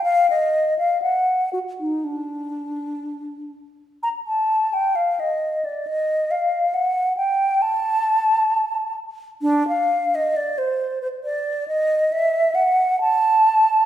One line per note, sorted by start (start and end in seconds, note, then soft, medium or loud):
0.04 0.27 F5 medium
0.30 0.77 D#5 medium
0.79 1.02 F5 medium
1.02 1.52 F#5 medium
1.53 1.59 F#4 medium
1.80 2.06 D#4 medium
2.04 3.53 D4 soft
4.03 4.09 A#5 medium
4.27 4.75 A5 medium
4.73 4.97 G5 medium
4.95 5.21 F5 medium
5.20 5.66 D#5 medium
5.65 5.88 D5 medium
5.87 6.32 D#5 medium
6.31 6.75 F5 medium
6.74 7.16 F#5 medium
7.17 7.63 G5 medium
7.62 8.95 A5 medium
9.42 9.66 D4 medium
9.68 10.16 F5 medium
10.15 10.38 D#5 medium
10.36 10.60 D5 medium
10.58 11.01 C5 medium
11.02 11.08 C5 medium
11.24 11.67 D5 medium
11.68 12.13 D#5 medium
12.12 12.56 E5 medium
12.55 12.99 F#5 medium
13.01 13.86 A5 medium